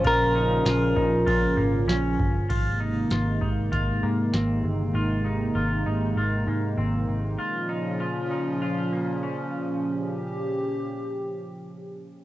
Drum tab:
CC |--------|x-------|--------|--------|
RD |x-x-x-x-|--------|--------|--------|
HH |--------|x-x-x-x-|--------|--------|
TB |--x---x-|--------|--------|--------|
SD |--o---o-|--o---o-|--------|--------|
BD |o--oo--o|o--oo---|--------|--------|

CC |--------|
RD |--------|
HH |--------|
TB |--------|
SD |--------|
BD |--------|